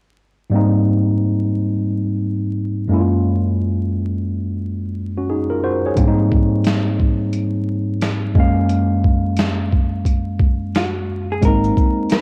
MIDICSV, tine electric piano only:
0, 0, Header, 1, 2, 480
1, 0, Start_track
1, 0, Key_signature, -4, "major"
1, 0, Tempo, 681818
1, 360, Time_signature, 4, 2, 24, 8
1, 8597, End_track
2, 0, Start_track
2, 0, Title_t, "Tine electric piano"
2, 0, Program_c, 0, 4
2, 350, Note_on_c, 0, 44, 69
2, 362, Note_on_c, 0, 55, 68
2, 371, Note_on_c, 0, 58, 60
2, 381, Note_on_c, 0, 60, 64
2, 392, Note_on_c, 0, 63, 71
2, 482, Control_c, 0, 64, 127
2, 2007, Note_off_c, 0, 44, 0
2, 2013, Note_off_c, 0, 55, 0
2, 2017, Note_off_c, 0, 58, 0
2, 2022, Note_off_c, 0, 60, 0
2, 2025, Note_on_c, 0, 42, 71
2, 2028, Note_off_c, 0, 63, 0
2, 2034, Note_on_c, 0, 56, 62
2, 2044, Note_on_c, 0, 58, 58
2, 2049, Control_c, 0, 64, 0
2, 2055, Note_on_c, 0, 61, 63
2, 2065, Note_on_c, 0, 64, 64
2, 2109, Note_off_c, 0, 64, 0
2, 2110, Note_on_c, 0, 65, 67
2, 2152, Control_c, 0, 64, 127
2, 3459, Note_off_c, 0, 61, 0
2, 3487, Note_off_c, 0, 65, 0
2, 3643, Note_on_c, 0, 66, 60
2, 3647, Note_on_c, 0, 61, 51
2, 3723, Note_off_c, 0, 66, 0
2, 3726, Note_off_c, 0, 61, 0
2, 3729, Note_on_c, 0, 68, 60
2, 3733, Note_on_c, 0, 63, 46
2, 3865, Note_off_c, 0, 68, 0
2, 3868, Note_off_c, 0, 63, 0
2, 3872, Note_on_c, 0, 70, 61
2, 3877, Note_on_c, 0, 65, 45
2, 3924, Note_off_c, 0, 42, 0
2, 3929, Note_off_c, 0, 56, 0
2, 3934, Note_off_c, 0, 58, 0
2, 3957, Note_off_c, 0, 70, 0
2, 3960, Note_off_c, 0, 65, 0
2, 3969, Note_on_c, 0, 72, 70
2, 3970, Note_on_c, 0, 66, 59
2, 4105, Note_off_c, 0, 72, 0
2, 4106, Note_off_c, 0, 66, 0
2, 4125, Note_on_c, 0, 73, 60
2, 4129, Note_on_c, 0, 68, 56
2, 4192, Note_on_c, 0, 44, 74
2, 4201, Note_on_c, 0, 55, 66
2, 4209, Control_c, 0, 64, 0
2, 4209, Note_on_c, 0, 58, 63
2, 4219, Note_on_c, 0, 60, 68
2, 4230, Note_on_c, 0, 62, 60
2, 4271, Note_off_c, 0, 62, 0
2, 4277, Note_on_c, 0, 63, 74
2, 4345, Note_off_c, 0, 73, 0
2, 4347, Note_off_c, 0, 68, 0
2, 4349, Control_c, 0, 64, 127
2, 5848, Note_off_c, 0, 44, 0
2, 5852, Note_off_c, 0, 55, 0
2, 5856, Note_off_c, 0, 58, 0
2, 5861, Note_off_c, 0, 60, 0
2, 5871, Note_on_c, 0, 42, 71
2, 5882, Note_on_c, 0, 56, 72
2, 5888, Control_c, 0, 64, 0
2, 5889, Note_on_c, 0, 58, 61
2, 5891, Note_off_c, 0, 63, 0
2, 5901, Note_on_c, 0, 61, 67
2, 5911, Note_on_c, 0, 77, 87
2, 6014, Control_c, 0, 64, 127
2, 7767, Note_off_c, 0, 42, 0
2, 7773, Note_off_c, 0, 56, 0
2, 7776, Note_off_c, 0, 58, 0
2, 7782, Note_off_c, 0, 61, 0
2, 7787, Note_off_c, 0, 77, 0
2, 8036, Note_on_c, 0, 56, 66
2, 8049, Note_on_c, 0, 58, 58
2, 8050, Control_c, 0, 64, 0
2, 8061, Note_on_c, 0, 60, 60
2, 8076, Note_on_c, 0, 63, 70
2, 8192, Control_c, 0, 64, 127
2, 8597, Note_off_c, 0, 56, 0
2, 8597, Note_off_c, 0, 58, 0
2, 8597, Note_off_c, 0, 60, 0
2, 8597, Note_off_c, 0, 63, 0
2, 8597, End_track
0, 0, End_of_file